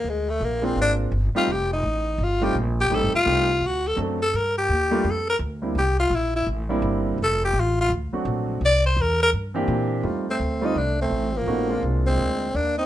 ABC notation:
X:1
M:4/4
L:1/8
Q:"Swing" 1/4=168
K:Fmix
V:1 name="Tenor saxophone"
_A, =A, B, C D z2 F | G E3 F G z G | A F3 ^F A z A | B G3 A B z2 |
G F =E E z4 | A G F F z4 | d c B B z4 | z C2 E D C2 B,- |
B,2 z C3 D E |]
V:2 name="Grand piano"
z3 [_A,B,CDF]3 z [G,=A,CEG] | z4 z [G,A,CEF] z2 | [G,A,CEG] z [G,A,CEG] z3 [^F,A,CDA] z | z3 [G,A,B,DF] z3 [G,B,CD=E] |
z4 z [G,B,CD=E]3 | z4 z [^F,A,CD^F]3 | z4 z [=E,B,CDG]3 | [G,A,CEF] z2 [G,A,CEF] z4 |
[A,=B,_DE_G] [_A,_B,C=DF]4 z3 |]
V:3 name="Trombone"
z8 | z8 | z8 | z8 |
z8 | z8 | z8 | z A,2 C A, A,2 F,- |
F,2 z _A,3 B, C |]
V:4 name="Upright bass" clef=bass
D,,2 B,,,2 _A,,,2 G,,, z | F,,,2 A,,,2 G,,,2 B,,,2 | (3A,,, G,,, E,,, C,,2 D,,2 ^F,,2 | G,,2 E,,2 F,,2 D,,2 |
C,,2 B,,,2 A,,,2 G,,,2 | F,,,2 A,,,2 D,, z B,,,2 | C,,2 =E,,2 G,,2 B,,2 | F,,2 D,,2 C,,2 A,,,2 |
B,,,2 C,,2 D,,2 E,,2 |]